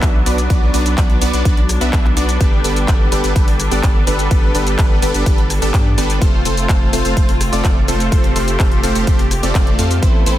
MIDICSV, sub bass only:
0, 0, Header, 1, 2, 480
1, 0, Start_track
1, 0, Tempo, 476190
1, 506, Time_signature, 4, 2, 24, 8
1, 10467, End_track
2, 0, Start_track
2, 0, Title_t, "Sub bass"
2, 0, Program_c, 0, 38
2, 25, Note_on_c, 0, 35, 102
2, 242, Note_off_c, 0, 35, 0
2, 266, Note_on_c, 0, 35, 99
2, 482, Note_off_c, 0, 35, 0
2, 505, Note_on_c, 0, 35, 99
2, 721, Note_off_c, 0, 35, 0
2, 746, Note_on_c, 0, 35, 99
2, 962, Note_off_c, 0, 35, 0
2, 985, Note_on_c, 0, 35, 92
2, 1202, Note_off_c, 0, 35, 0
2, 1225, Note_on_c, 0, 35, 97
2, 1322, Note_off_c, 0, 35, 0
2, 1345, Note_on_c, 0, 35, 93
2, 1441, Note_off_c, 0, 35, 0
2, 1465, Note_on_c, 0, 35, 102
2, 1801, Note_off_c, 0, 35, 0
2, 1826, Note_on_c, 0, 35, 95
2, 1922, Note_off_c, 0, 35, 0
2, 1945, Note_on_c, 0, 35, 99
2, 2161, Note_off_c, 0, 35, 0
2, 2184, Note_on_c, 0, 35, 91
2, 2401, Note_off_c, 0, 35, 0
2, 2425, Note_on_c, 0, 31, 100
2, 2641, Note_off_c, 0, 31, 0
2, 2666, Note_on_c, 0, 31, 98
2, 2882, Note_off_c, 0, 31, 0
2, 2906, Note_on_c, 0, 31, 94
2, 3122, Note_off_c, 0, 31, 0
2, 3144, Note_on_c, 0, 31, 97
2, 3241, Note_off_c, 0, 31, 0
2, 3265, Note_on_c, 0, 31, 97
2, 3361, Note_off_c, 0, 31, 0
2, 3384, Note_on_c, 0, 31, 98
2, 3721, Note_off_c, 0, 31, 0
2, 3743, Note_on_c, 0, 31, 99
2, 3841, Note_off_c, 0, 31, 0
2, 3865, Note_on_c, 0, 31, 102
2, 4081, Note_off_c, 0, 31, 0
2, 4104, Note_on_c, 0, 31, 91
2, 4321, Note_off_c, 0, 31, 0
2, 4344, Note_on_c, 0, 31, 101
2, 4561, Note_off_c, 0, 31, 0
2, 4584, Note_on_c, 0, 31, 101
2, 4801, Note_off_c, 0, 31, 0
2, 4824, Note_on_c, 0, 31, 96
2, 5041, Note_off_c, 0, 31, 0
2, 5063, Note_on_c, 0, 31, 96
2, 5161, Note_off_c, 0, 31, 0
2, 5184, Note_on_c, 0, 31, 97
2, 5281, Note_off_c, 0, 31, 0
2, 5305, Note_on_c, 0, 31, 100
2, 5642, Note_off_c, 0, 31, 0
2, 5664, Note_on_c, 0, 31, 98
2, 5761, Note_off_c, 0, 31, 0
2, 5785, Note_on_c, 0, 43, 104
2, 6002, Note_off_c, 0, 43, 0
2, 6026, Note_on_c, 0, 31, 93
2, 6242, Note_off_c, 0, 31, 0
2, 6265, Note_on_c, 0, 29, 99
2, 6482, Note_off_c, 0, 29, 0
2, 6505, Note_on_c, 0, 29, 101
2, 6722, Note_off_c, 0, 29, 0
2, 6745, Note_on_c, 0, 29, 96
2, 6962, Note_off_c, 0, 29, 0
2, 6985, Note_on_c, 0, 29, 94
2, 7081, Note_off_c, 0, 29, 0
2, 7104, Note_on_c, 0, 29, 96
2, 7201, Note_off_c, 0, 29, 0
2, 7225, Note_on_c, 0, 29, 101
2, 7562, Note_off_c, 0, 29, 0
2, 7586, Note_on_c, 0, 29, 94
2, 7682, Note_off_c, 0, 29, 0
2, 7705, Note_on_c, 0, 29, 98
2, 7922, Note_off_c, 0, 29, 0
2, 7944, Note_on_c, 0, 29, 91
2, 8161, Note_off_c, 0, 29, 0
2, 8186, Note_on_c, 0, 29, 100
2, 8402, Note_off_c, 0, 29, 0
2, 8423, Note_on_c, 0, 29, 94
2, 8640, Note_off_c, 0, 29, 0
2, 8666, Note_on_c, 0, 29, 94
2, 8882, Note_off_c, 0, 29, 0
2, 8904, Note_on_c, 0, 29, 100
2, 9001, Note_off_c, 0, 29, 0
2, 9025, Note_on_c, 0, 29, 98
2, 9121, Note_off_c, 0, 29, 0
2, 9146, Note_on_c, 0, 29, 97
2, 9482, Note_off_c, 0, 29, 0
2, 9505, Note_on_c, 0, 29, 93
2, 9601, Note_off_c, 0, 29, 0
2, 9626, Note_on_c, 0, 29, 103
2, 9842, Note_off_c, 0, 29, 0
2, 9864, Note_on_c, 0, 41, 97
2, 10081, Note_off_c, 0, 41, 0
2, 10106, Note_on_c, 0, 33, 101
2, 10322, Note_off_c, 0, 33, 0
2, 10345, Note_on_c, 0, 33, 98
2, 10467, Note_off_c, 0, 33, 0
2, 10467, End_track
0, 0, End_of_file